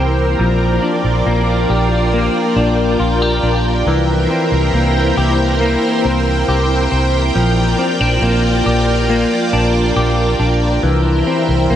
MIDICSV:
0, 0, Header, 1, 4, 480
1, 0, Start_track
1, 0, Tempo, 869565
1, 219, Time_signature, 4, 2, 24, 8
1, 6490, End_track
2, 0, Start_track
2, 0, Title_t, "String machine"
2, 0, Program_c, 0, 50
2, 0, Note_on_c, 0, 64, 76
2, 0, Note_on_c, 0, 70, 67
2, 0, Note_on_c, 0, 72, 72
2, 0, Note_on_c, 0, 79, 77
2, 197, Note_off_c, 0, 79, 0
2, 200, Note_off_c, 0, 72, 0
2, 201, Note_off_c, 0, 64, 0
2, 218, Note_on_c, 0, 74, 66
2, 219, Note_on_c, 0, 79, 82
2, 220, Note_on_c, 0, 65, 78
2, 2119, Note_off_c, 0, 74, 0
2, 2120, Note_off_c, 0, 65, 0
2, 2139, Note_on_c, 0, 64, 77
2, 2139, Note_on_c, 0, 72, 64
2, 4040, Note_off_c, 0, 64, 0
2, 4040, Note_off_c, 0, 72, 0
2, 4055, Note_on_c, 0, 65, 74
2, 4057, Note_on_c, 0, 74, 68
2, 5957, Note_off_c, 0, 79, 0
2, 5958, Note_off_c, 0, 65, 0
2, 5958, Note_off_c, 0, 70, 0
2, 5959, Note_off_c, 0, 74, 0
2, 5983, Note_on_c, 0, 70, 75
2, 5984, Note_on_c, 0, 79, 83
2, 5985, Note_on_c, 0, 64, 72
2, 5988, Note_on_c, 0, 72, 72
2, 6490, Note_off_c, 0, 64, 0
2, 6490, Note_off_c, 0, 70, 0
2, 6490, Note_off_c, 0, 72, 0
2, 6490, Note_off_c, 0, 79, 0
2, 6490, End_track
3, 0, Start_track
3, 0, Title_t, "Clean electric guitar"
3, 0, Program_c, 1, 27
3, 0, Note_on_c, 1, 52, 65
3, 0, Note_on_c, 1, 58, 60
3, 0, Note_on_c, 1, 60, 55
3, 0, Note_on_c, 1, 67, 59
3, 214, Note_off_c, 1, 52, 0
3, 217, Note_on_c, 1, 53, 68
3, 266, Note_off_c, 1, 60, 0
3, 456, Note_on_c, 1, 62, 51
3, 696, Note_off_c, 1, 58, 0
3, 698, Note_on_c, 1, 58, 48
3, 937, Note_off_c, 1, 67, 0
3, 939, Note_on_c, 1, 67, 56
3, 1176, Note_off_c, 1, 58, 0
3, 1178, Note_on_c, 1, 58, 58
3, 1409, Note_off_c, 1, 62, 0
3, 1415, Note_on_c, 1, 62, 53
3, 1652, Note_off_c, 1, 67, 0
3, 1655, Note_on_c, 1, 65, 64
3, 1777, Note_off_c, 1, 65, 0
3, 1777, Note_on_c, 1, 67, 47
3, 1889, Note_off_c, 1, 62, 0
3, 1895, Note_on_c, 1, 62, 52
3, 2136, Note_off_c, 1, 53, 0
3, 2138, Note_on_c, 1, 52, 72
3, 2185, Note_off_c, 1, 62, 0
3, 2186, Note_off_c, 1, 67, 0
3, 2377, Note_on_c, 1, 60, 53
3, 2394, Note_off_c, 1, 58, 0
3, 2617, Note_on_c, 1, 58, 50
3, 2856, Note_on_c, 1, 67, 55
3, 3094, Note_off_c, 1, 58, 0
3, 3097, Note_on_c, 1, 58, 64
3, 3332, Note_off_c, 1, 60, 0
3, 3339, Note_on_c, 1, 60, 58
3, 3578, Note_off_c, 1, 67, 0
3, 3580, Note_on_c, 1, 67, 62
3, 3810, Note_off_c, 1, 60, 0
3, 3817, Note_on_c, 1, 60, 56
3, 4058, Note_off_c, 1, 52, 0
3, 4060, Note_on_c, 1, 53, 72
3, 4106, Note_off_c, 1, 60, 0
3, 4298, Note_on_c, 1, 60, 50
3, 4315, Note_off_c, 1, 58, 0
3, 4420, Note_off_c, 1, 60, 0
3, 4420, Note_on_c, 1, 62, 46
3, 4540, Note_on_c, 1, 58, 50
3, 4779, Note_off_c, 1, 67, 0
3, 4781, Note_on_c, 1, 67, 55
3, 5019, Note_off_c, 1, 58, 0
3, 5021, Note_on_c, 1, 58, 62
3, 5254, Note_off_c, 1, 62, 0
3, 5261, Note_on_c, 1, 62, 58
3, 5498, Note_off_c, 1, 67, 0
3, 5501, Note_on_c, 1, 67, 59
3, 5732, Note_off_c, 1, 62, 0
3, 5739, Note_on_c, 1, 62, 57
3, 5976, Note_off_c, 1, 53, 0
3, 5978, Note_on_c, 1, 52, 69
3, 6027, Note_off_c, 1, 62, 0
3, 6221, Note_on_c, 1, 60, 49
3, 6237, Note_off_c, 1, 58, 0
3, 6460, Note_on_c, 1, 58, 49
3, 6490, Note_off_c, 1, 52, 0
3, 6490, Note_off_c, 1, 58, 0
3, 6490, Note_off_c, 1, 60, 0
3, 6490, Note_off_c, 1, 67, 0
3, 6490, End_track
4, 0, Start_track
4, 0, Title_t, "Fingered electric bass"
4, 0, Program_c, 2, 33
4, 0, Note_on_c, 2, 36, 85
4, 190, Note_off_c, 2, 36, 0
4, 217, Note_on_c, 2, 34, 94
4, 429, Note_off_c, 2, 34, 0
4, 576, Note_on_c, 2, 34, 80
4, 683, Note_off_c, 2, 34, 0
4, 696, Note_on_c, 2, 34, 79
4, 908, Note_off_c, 2, 34, 0
4, 936, Note_on_c, 2, 34, 86
4, 1254, Note_off_c, 2, 34, 0
4, 1414, Note_on_c, 2, 34, 79
4, 1627, Note_off_c, 2, 34, 0
4, 1654, Note_on_c, 2, 34, 85
4, 1867, Note_off_c, 2, 34, 0
4, 1894, Note_on_c, 2, 34, 78
4, 2107, Note_off_c, 2, 34, 0
4, 2133, Note_on_c, 2, 36, 97
4, 2347, Note_off_c, 2, 36, 0
4, 2493, Note_on_c, 2, 36, 80
4, 2601, Note_off_c, 2, 36, 0
4, 2613, Note_on_c, 2, 36, 84
4, 2827, Note_off_c, 2, 36, 0
4, 2854, Note_on_c, 2, 36, 93
4, 3173, Note_off_c, 2, 36, 0
4, 3339, Note_on_c, 2, 36, 88
4, 3550, Note_off_c, 2, 36, 0
4, 3578, Note_on_c, 2, 36, 84
4, 3790, Note_off_c, 2, 36, 0
4, 3819, Note_on_c, 2, 36, 86
4, 4030, Note_off_c, 2, 36, 0
4, 4060, Note_on_c, 2, 34, 105
4, 4270, Note_off_c, 2, 34, 0
4, 4419, Note_on_c, 2, 34, 85
4, 4525, Note_off_c, 2, 34, 0
4, 4538, Note_on_c, 2, 34, 92
4, 4749, Note_off_c, 2, 34, 0
4, 4780, Note_on_c, 2, 34, 94
4, 5096, Note_off_c, 2, 34, 0
4, 5260, Note_on_c, 2, 34, 74
4, 5471, Note_off_c, 2, 34, 0
4, 5499, Note_on_c, 2, 34, 90
4, 5710, Note_off_c, 2, 34, 0
4, 5738, Note_on_c, 2, 34, 81
4, 5949, Note_off_c, 2, 34, 0
4, 5979, Note_on_c, 2, 36, 97
4, 6190, Note_off_c, 2, 36, 0
4, 6341, Note_on_c, 2, 36, 80
4, 6446, Note_off_c, 2, 36, 0
4, 6460, Note_on_c, 2, 36, 86
4, 6490, Note_off_c, 2, 36, 0
4, 6490, End_track
0, 0, End_of_file